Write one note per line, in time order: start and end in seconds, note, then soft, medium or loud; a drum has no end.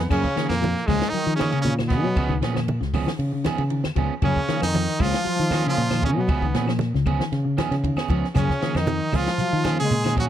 0.09 0.23 F#2 loud
0.09 0.47 C#3 medium
0.09 0.48 C#3 medium
0.09 0.26 F3 medium
0.09 0.26 A#3 medium
0.09 0.27 C#4 medium
0.09 0.47 C#4 medium
0.09 0.27 G#4 medium
0.09 muted clean electric guitar stroke medium
0.09 kick loud
0.09 crash loud
0.09 claves medium
0.24 kick medium
0.36 0.56 D#3 medium
0.36 0.52 F3 medium
0.36 0.52 A#3 medium
0.36 0.52 C#4 medium
0.36 0.53 G#4 medium
0.36 muted fingered electric bass stroke soft
0.36 snare medium
0.36 ride bell medium
0.48 0.74 F2 medium
0.48 0.84 A#2 medium
0.48 0.89 A#2 medium
0.48 0.88 A#3 loud
0.48 snare medium
0.48 claves medium
0.61 0.81 F3 medium
0.61 ride bell soft
0.61 high conga loud
0.76 snare soft
0.85 1.00 C#2 loud
0.85 1.12 G#2 medium
0.85 1.13 G#2 medium
0.85 1.04 F3 medium
0.85 1.11 G#3 loud
0.85 1.07 G#3 medium
0.85 1.04 A#3 medium
0.85 1.04 C#4 medium
0.85 kick medium
0.85 open hi-hat medium
0.85 claves medium
0.89 1.04 G#4 medium
0.89 high conga medium
0.89 low conga medium
1.01 snare medium
1.01 ride bell medium
1.09 1.38 D#3 loud
1.09 1.36 D#3 loud
1.09 1.35 D#4 loud
1.09 muted fingered electric bass stroke soft
1.14 1.24 F#3 medium
1.14 ride bell medium
1.27 1.51 D#3 medium
1.27 1.46 F3 medium
1.35 1.61 C#3 medium
1.35 1.62 C#3 medium
1.35 1.52 F3 medium
1.35 1.61 C#4 loud
1.35 snare medium
1.35 ride bell medium
1.35 claves medium
1.40 1.52 A#3 medium
1.40 1.52 C#4 medium
1.40 1.51 G#4 medium
1.40 high conga loud
1.52 1.72 C#3 medium
1.52 1.68 A#3 soft
1.52 1.68 C#4 soft
1.52 1.67 G#4 medium
1.52 ride bell medium
1.62 2.04 A#2 medium
1.62 1.74 C#3 medium
1.62 1.77 C#3 medium
1.62 1.74 C#4 loud
1.62 snare soft
1.62 ride bell medium
1.67 high conga medium
1.78 1.97 D#3 medium
1.78 snare medium
1.78 high conga medium
1.78 claves medium
1.88 2.38 B2 medium
1.88 2.07 F3 medium
1.88 2.07 A#3 medium
1.88 2.37 B3 medium
1.88 2.07 C#4 medium
1.88 2.07 G#4 medium
1.88 kick medium
1.88 snare soft
1.88 ride bell medium
1.88 high conga medium
1.88 low conga medium
2.03 2.23 B2 medium
2.03 2.15 F#3 medium
2.16 2.41 C#2 loud
2.16 2.32 F3 medium
2.16 2.33 B3 medium
2.16 2.33 C#4 medium
2.16 2.33 G#4 medium
2.16 kick loud
2.16 ride bell medium
2.16 claves medium
2.29 2.49 D#3 medium
2.29 kick medium
2.41 2.79 A#2 medium
2.41 2.58 F3 medium
2.41 2.58 B3 medium
2.41 2.59 C#4 medium
2.41 2.59 G#4 medium
2.41 snare medium
2.41 ride bell medium
2.54 2.74 F3 medium
2.54 snare medium
2.54 high conga medium
2.54 claves medium
2.68 ride bell medium
2.68 high conga loud
2.81 3.05 C#2 loud
2.81 3.00 C#3 medium
2.81 snare soft
2.94 3.10 F3 medium
2.94 3.10 B3 medium
2.94 3.10 C#4 medium
2.94 3.10 G#4 medium
2.94 kick medium
2.94 open hi-hat medium
2.94 high conga medium
2.94 low conga medium
2.94 claves medium
3.06 3.26 D#3 medium
3.06 snare medium
3.19 3.43 C#3 loud
3.19 ride bell medium
3.32 3.42 C#3 medium
3.44 3.64 D#3 medium
3.44 3.61 F3 medium
3.44 3.62 B3 medium
3.44 3.62 C#4 medium
3.44 3.62 G#4 medium
3.44 snare medium
3.44 ride bell medium
3.44 high conga loud
3.44 low conga medium
3.44 claves medium
3.58 3.83 C#3 medium
3.58 ride bell medium
3.70 3.90 D#3 medium
3.70 ride bell medium
3.84 snare medium
3.84 high conga medium
3.84 claves medium
3.95 4.09 C#2 loud
3.95 4.15 F3 medium
3.95 4.13 F3 medium
3.95 4.13 B3 medium
3.95 4.13 C#4 medium
3.95 4.13 G#4 medium
3.95 kick medium
3.95 ride bell medium
3.95 low conga medium
4.22 4.35 F#2 loud
4.22 4.42 C#3 loud
4.22 4.60 C#3 medium
4.22 4.39 F3 medium
4.22 4.39 A#3 medium
4.22 4.39 C#4 medium
4.22 4.60 C#4 loud
4.22 4.39 G#4 medium
4.22 kick loud
4.22 ride bell medium
4.22 low conga medium
4.22 claves medium
4.36 kick medium
4.48 4.68 D#3 medium
4.48 4.64 F3 medium
4.48 4.64 A#3 medium
4.48 4.64 C#4 medium
4.48 4.65 G#4 medium
4.48 muted fingered electric bass stroke soft
4.48 snare medium
4.48 ride bell medium
4.62 4.86 F2 medium
4.62 4.98 D#3 medium
4.62 5.05 D#3 medium
4.62 5.03 D#4 loud
4.62 snare medium
4.62 claves medium
4.74 4.94 F3 medium
4.74 snare soft
4.74 ride bell medium
4.74 high conga loud
4.89 snare soft
4.99 5.13 C#2 medium
4.99 5.16 F3 medium
4.99 5.66 F3 loud
4.99 5.67 F3 medium
4.99 5.19 G#3 medium
4.99 5.16 A#3 medium
4.99 5.16 C#4 medium
4.99 5.66 F4 loud
4.99 5.17 G#4 medium
4.99 kick medium
4.99 open hi-hat medium
4.99 high conga medium
4.99 low conga medium
4.99 claves medium
5.14 snare medium
5.14 ride bell medium
5.25 5.35 F#3 medium
5.25 muted fingered electric bass stroke soft
5.25 ride bell medium
5.39 5.64 D#3 medium
5.39 5.58 F3 medium
5.51 5.65 F3 medium
5.51 5.65 A#3 medium
5.51 5.65 C#4 medium
5.51 5.64 G#4 medium
5.51 snare medium
5.51 ride bell soft
5.51 high conga loud
5.51 low conga medium
5.51 claves medium
5.65 5.85 C#3 medium
5.65 6.02 F3 medium
5.65 5.81 A#3 soft
5.65 5.80 C#4 medium
5.65 6.03 F4 loud
5.65 5.80 G#4 medium
5.65 snare soft
5.65 ride bell medium
5.77 6.17 A#2 medium
5.77 ride bell medium
5.90 6.11 D#3 medium
5.90 snare medium
5.90 high conga medium
5.90 claves medium
6.02 6.11 C#3 medium
6.02 6.19 F3 medium
6.02 6.19 A#3 medium
6.02 6.19 C#4 medium
6.02 6.11 C#4 medium
6.02 6.20 G#4 medium
6.02 kick medium
6.02 ride bell medium
6.02 high conga medium
6.02 low conga medium
6.06 6.12 C#3 medium
6.16 6.36 B2 medium
6.16 6.65 B2 medium
6.16 6.67 B2 medium
6.16 6.28 F#3 medium
6.16 6.66 B3 medium
6.28 6.53 C#2 loud
6.28 6.45 F3 medium
6.28 6.45 B3 medium
6.28 6.45 C#4 medium
6.28 6.45 G#4 medium
6.28 kick loud
6.28 ride bell medium
6.28 low conga medium
6.28 claves medium
6.41 6.61 D#3 medium
6.41 kick medium
6.54 6.91 A#2 loud
6.54 6.71 F3 medium
6.54 6.71 B3 medium
6.54 6.71 C#4 medium
6.54 6.71 G#4 medium
6.54 snare medium
6.54 ride bell medium
6.67 6.87 F3 medium
6.67 snare medium
6.67 claves medium
6.79 snare soft
6.79 ride bell medium
6.79 high conga loud
6.94 7.18 C#2 medium
6.94 7.14 C#3 medium
6.94 snare soft
7.06 7.22 F3 medium
7.06 7.23 B3 medium
7.06 7.23 C#4 medium
7.06 7.23 G#4 medium
7.06 kick medium
7.06 ride bell medium
7.06 high conga medium
7.06 low conga medium
7.06 claves medium
7.19 7.39 D#3 medium
7.19 snare medium
7.32 7.56 C#3 medium
7.32 snare soft
7.32 ride bell medium
7.45 7.54 C#3 medium
7.57 7.77 D#3 medium
7.57 7.74 F3 medium
7.57 7.74 B3 medium
7.57 7.74 C#4 medium
7.57 7.74 G#4 medium
7.57 snare medium
7.57 ride bell medium
7.57 high conga loud
7.57 low conga medium
7.57 claves medium
7.71 7.96 C#3 medium
7.71 snare soft
7.71 ride bell medium
7.84 8.03 D#3 medium
7.84 kick medium
7.84 ride bell medium
7.84 high conga medium
7.96 8.09 B3 soft
7.96 8.09 C#4 medium
7.96 8.09 G#4 medium
7.96 snare medium
7.96 high conga medium
7.96 claves medium
8.08 8.22 C#2 loud
8.08 8.26 F3 medium
8.08 8.30 F3 medium
8.08 8.26 B3 medium
8.08 8.26 C#4 medium
8.08 8.26 G#4 medium
8.08 kick medium
8.08 ride bell medium
8.08 low conga medium
8.24 snare soft
8.34 8.48 F#2 loud
8.34 8.54 C#3 loud
8.34 8.73 C#3 medium
8.34 8.80 C#3 medium
8.34 8.51 F3 medium
8.34 8.51 A#3 medium
8.34 8.52 C#4 medium
8.34 8.78 C#4 medium
8.34 8.52 G#4 medium
8.34 kick loud
8.34 snare soft
8.34 ride bell medium
8.34 claves medium
8.34 shekere medium
8.49 kick medium
8.49 snare soft
8.61 8.81 D#3 medium
8.61 8.77 F3 medium
8.61 8.77 A#3 medium
8.61 8.77 C#4 medium
8.61 8.78 G#4 medium
8.61 muted fingered electric bass stroke soft
8.61 snare medium
8.61 ride bell medium
8.61 shekere soft
8.75 8.99 F2 medium
8.75 9.14 D#3 medium
8.75 9.18 D#3 medium
8.75 9.17 D#4 medium
8.75 snare medium
8.75 high conga medium
8.75 claves medium
8.87 9.06 F3 medium
8.87 ride bell medium
8.87 high conga loud
8.87 shekere medium
9.12 9.26 C#2 medium
9.12 9.29 F3 medium
9.12 9.79 F3 medium
9.12 9.33 G#3 medium
9.12 9.29 A#3 medium
9.12 9.29 C#4 medium
9.12 9.79 F4 loud
9.12 9.29 G#4 medium
9.12 kick medium
9.12 open hi-hat medium
9.12 high conga medium
9.12 low conga medium
9.12 claves medium
9.12 shekere soft
9.17 9.80 F3 medium
9.27 snare medium
9.27 ride bell medium
9.38 9.50 F#3 medium
9.38 muted fingered electric bass stroke soft
9.38 ride bell medium
9.38 shekere medium
9.53 9.77 D#3 medium
9.53 9.73 F3 medium
9.64 9.78 F3 medium
9.64 9.78 A#3 medium
9.64 9.78 C#4 medium
9.64 9.77 G#4 medium
9.64 snare medium
9.64 ride bell soft
9.64 high conga loud
9.64 low conga medium
9.64 claves medium
9.64 shekere soft
9.78 9.99 C#3 medium
9.78 9.94 A#3 soft
9.78 9.94 C#4 soft
9.78 9.93 G#4 medium
9.78 10.15 G#4 loud
9.78 snare soft
9.78 ride bell medium
9.82 10.16 G#3 loud
9.82 10.16 G#3 medium
9.91 10.29 A#2 loud
9.91 ride bell medium
9.91 shekere medium
10.04 10.24 D#3 medium
10.04 10.15 A#3 soft
10.04 10.16 C#4 soft
10.04 10.16 G#4 medium
10.04 snare medium
10.04 high conga medium
10.04 claves medium
10.16 10.29 F3 medium
10.16 10.25 F#3 medium
10.16 10.29 A#3 medium
10.16 10.29 C#4 medium
10.16 10.25 F#4 medium
10.16 10.29 G#4 medium
10.16 kick medium
10.16 snare soft
10.16 ride bell medium
10.16 low conga medium
10.16 shekere soft